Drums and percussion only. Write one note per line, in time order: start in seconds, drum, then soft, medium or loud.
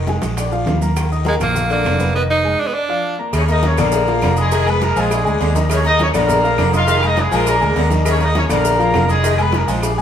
0.07 high bongo medium
0.07 high conga medium
0.07 low timbale medium
0.07 short guiro medium
0.07 maracas soft
0.22 high conga medium
0.22 high timbale medium
0.22 short guiro medium
0.22 maracas medium
0.37 high bongo medium
0.37 high conga soft
0.37 high timbale medium
0.37 long guiro medium
0.37 claves medium
0.37 maracas medium
0.52 high bongo soft
0.52 high conga soft
0.52 maracas soft
0.66 high bongo soft
0.66 low bongo medium
0.66 high conga medium
0.66 high timbale medium
0.66 low timbale medium
0.66 short guiro medium
0.66 maracas soft
0.81 high bongo soft
0.81 high conga medium
0.81 short guiro medium
0.81 maracas medium
0.96 high bongo medium
0.96 high conga soft
0.96 high timbale medium
0.96 long guiro medium
0.96 claves medium
0.96 maracas medium
1.11 high bongo soft
1.11 high conga soft
1.11 maracas soft
1.25 high bongo medium
1.25 high conga medium
1.25 high timbale medium
1.25 low timbale medium
1.25 short guiro medium
1.25 maracas soft
1.40 high conga soft
1.40 low conga medium
1.40 high timbale loud
1.40 short guiro medium
1.40 claves medium
1.40 maracas medium
1.55 high bongo medium
1.55 high conga soft
1.55 low conga medium
1.55 long guiro medium
1.55 maracas medium
1.70 high bongo soft
1.70 high conga soft
1.70 high timbale medium
1.70 maracas soft
1.85 high bongo soft
1.85 low bongo medium
1.85 high conga medium
1.85 high timbale loud
1.85 low timbale medium
1.85 short guiro medium
1.85 claves medium
1.85 maracas soft
1.99 high bongo soft
1.99 high conga medium
1.99 short guiro medium
1.99 maracas medium
3.33 cowbell loud
3.33 high conga soft
3.33 low agogo loud
3.33 long guiro medium
3.33 claves medium
3.33 maracas medium
3.48 cowbell medium
3.48 high conga soft
3.48 maracas soft
3.63 cowbell medium
3.63 high conga medium
3.63 low timbale medium
3.63 low agogo medium
3.63 short guiro medium
3.63 maracas soft
3.77 high conga soft
3.77 low conga medium
3.77 low agogo loud
3.77 short guiro medium
3.77 claves medium
3.77 maracas medium
3.92 cowbell loud
3.92 high conga soft
3.92 long guiro medium
3.92 maracas medium
4.07 high conga soft
4.07 low agogo medium
4.07 maracas soft
4.22 cowbell medium
4.22 high conga medium
4.22 low timbale medium
4.22 low agogo loud
4.22 short guiro medium
4.22 claves medium
4.22 maracas soft
4.37 low agogo medium
4.37 short guiro medium
4.37 maracas medium
4.51 cowbell loud
4.51 high conga soft
4.51 low agogo medium
4.51 long guiro medium
4.51 maracas medium
4.66 high conga soft
4.66 low agogo loud
4.66 claves medium
4.66 maracas soft
4.81 cowbell medium
4.81 high conga medium
4.81 low timbale medium
4.81 short guiro medium
4.81 maracas soft
4.96 high conga soft
4.96 short guiro medium
4.96 maracas medium
5.11 cowbell loud
5.11 high conga soft
5.11 low agogo loud
5.11 long guiro medium
5.11 claves medium
5.11 maracas medium
5.26 high conga soft
5.26 maracas soft
5.41 cowbell medium
5.41 high conga soft
5.41 low timbale medium
5.41 low agogo medium
5.41 short guiro medium
5.41 maracas soft
5.55 cowbell medium
5.55 high conga medium
5.55 short guiro medium
5.55 maracas medium
5.70 cowbell loud
5.70 high conga soft
5.70 low agogo loud
5.70 long guiro medium
5.70 claves medium
5.70 maracas medium
5.85 cowbell medium
5.85 high conga soft
5.85 maracas soft
5.99 cowbell medium
5.99 high conga loud
5.99 low timbale medium
5.99 low agogo medium
5.99 short guiro medium
5.99 maracas soft
6.14 high conga soft
6.14 low conga medium
6.14 low agogo loud
6.14 short guiro medium
6.14 claves medium
6.14 maracas medium
6.28 cowbell loud
6.28 high conga soft
6.28 low conga medium
6.28 long guiro medium
6.28 maracas medium
6.44 low agogo medium
6.44 maracas soft
6.58 cowbell medium
6.58 high conga medium
6.58 low timbale medium
6.58 low agogo loud
6.58 short guiro medium
6.58 claves medium
6.58 maracas soft
6.73 high conga medium
6.73 low agogo medium
6.73 short guiro medium
6.73 maracas medium
6.88 cowbell loud
6.88 low agogo medium
6.88 maracas medium
7.03 high conga soft
7.03 low agogo loud
7.03 claves medium
7.03 maracas soft
7.17 cowbell medium
7.17 high conga medium
7.17 low timbale medium
7.17 short guiro medium
7.17 maracas soft
7.32 high conga soft
7.32 short guiro medium
7.32 maracas medium
7.46 cowbell loud
7.46 high conga soft
7.46 low agogo loud
7.46 claves medium
7.46 maracas loud
7.61 high conga soft
7.61 maracas soft
7.76 cowbell medium
7.76 high conga soft
7.76 low timbale medium
7.76 low agogo medium
7.76 short guiro medium
7.76 maracas soft
7.91 cowbell medium
7.91 high conga medium
7.91 short guiro medium
7.91 maracas medium
8.05 cowbell loud
8.05 high conga soft
8.05 low agogo loud
8.05 claves medium
8.05 maracas medium
8.20 cowbell medium
8.20 high conga soft
8.20 maracas soft
8.35 cowbell medium
8.35 high conga loud
8.35 low timbale medium
8.35 low agogo medium
8.35 short guiro medium
8.35 maracas soft
8.49 high conga soft
8.49 low conga medium
8.49 low agogo loud
8.49 short guiro medium
8.49 claves medium
8.49 maracas medium
8.64 cowbell loud
8.64 high conga soft
8.64 long guiro medium
8.64 maracas medium
8.79 high conga soft
8.79 low agogo medium
8.79 maracas soft
8.94 cowbell medium
8.94 high conga medium
8.94 low timbale medium
8.94 low agogo loud
8.94 short guiro medium
8.94 claves medium
8.94 maracas soft
9.09 high conga medium
9.09 low agogo medium
9.09 short guiro medium
9.09 maracas medium
9.24 cowbell loud
9.24 high conga soft
9.24 low agogo medium
9.24 maracas medium
9.38 high conga soft
9.38 low agogo loud
9.38 claves medium
9.38 maracas soft
9.52 cowbell medium
9.52 high conga loud
9.52 low timbale medium
9.52 short guiro medium
9.52 maracas soft
9.68 high conga soft
9.68 short guiro medium
9.68 maracas medium
9.82 cowbell loud
9.82 high conga soft
9.82 low agogo loud
9.82 long guiro medium
9.82 claves medium
9.82 maracas loud
9.96 high conga soft
9.96 maracas soft